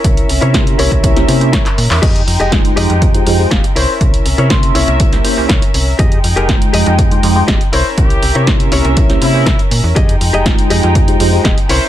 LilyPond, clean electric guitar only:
\new Staff \with { instrumentName = "Clean electric guitar" } { \time 4/4 \key f \minor \tempo 4 = 121 <e' bes' des''>8 r16 <e' bes' des''>16 r8 <e' bes' des''>8. r8. <e' bes' des''>16 r8. | <g' aes' ees''>8 r16 <g' aes' ees''>16 r8 <g' aes' ees''>8. r8. <g' aes' f''>16 r16 <e' bes' des''>8~ | <e' bes' des''>8 r16 <e' bes' des''>16 r8 <e' bes' des''>8. r8. <e' bes' des''>16 r8. | <g' aes' ees''>8 r16 <g' aes' bes'>16 r8 <g' aes' ees''>8. r8. <g' aes' ees''>16 r16 <e' bes' des''>8~ |
<e' bes' des''>8 r16 <e' bes' des''>16 r8 <e' bes' des''>8. r8. <e' bes' e''>16 r8. | <g' aes' ees''>8 r16 <g' aes' ees''>16 r8 <g' aes' ees''>8. r8. <g' aes' ees''>16 r16 <e' bes' des''>8 | }